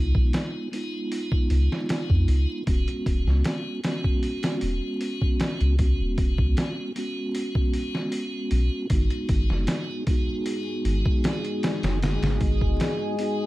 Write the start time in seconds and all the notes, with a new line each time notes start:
Already playing: C#2 G#3 B3 D#4 F4
0.15 B1, kick
0.33 snare, open hi-hat
0.72 G#3 B3 D#4 F4, open hi-hat
1.12 open hi-hat
1.32 kick
1.50 C#2, open hi-hat
1.72 snare
1.89 snare, open hi-hat
2.10 F2, kick
2.28 C#2, open hi-hat
2.66 E1 G#3 B3 C#4 F#4, kick, open hi-hat
2.88 closed hi-hat
3.06 E1, kick, open hi-hat
3.26 C#2, snare
3.44 snare, open hi-hat
3.84 G#3 B3 C#4 F#4, snare, open hi-hat
4.04 kick
4.23 open hi-hat
4.43 snare, open hi-hat
4.61 E1, open hi-hat
5.01 open hi-hat
5.22 kick
5.40 snare, open hi-hat
5.61 C#2, closed hi-hat
5.78 G#3 B3 C#4 F#4, kick, open hi-hat
6.00 E1
6.18 E1, kick, open hi-hat
6.38 C#2, kick
6.57 snare, open hi-hat
6.95 G#3 B3 C#4 F#4, open hi-hat
7.35 open hi-hat
7.55 kick
7.74 open hi-hat
7.95 snare
8.12 open hi-hat
8.51 B1, open hi-hat
8.90 G#1 G#3 B3 D#4 G#4, kick, open hi-hat
8.94 F#4
9.10 closed hi-hat
9.29 G#1, kick, open hi-hat
9.50 F#1, snare
9.67 snare, open hi-hat
10.07 G#3 B3 D#4 F#4, kick, open hi-hat
10.46 open hi-hat
10.85 G#1, open hi-hat
11.06 kick
11.24 snare, open hi-hat
11.45 closed hi-hat
11.63 snare, open hi-hat
11.83 F#1, snare, open hi-hat
12.01 G#3 B3 D#4 F#4, snare, open hi-hat
12.22 G#1, snare, open hi-hat
12.41 G#1, kick, open hi-hat
12.61 F#1, kick
12.80 snare, open hi-hat
13.18 G#3 B3 D#4 F#4, open hi-hat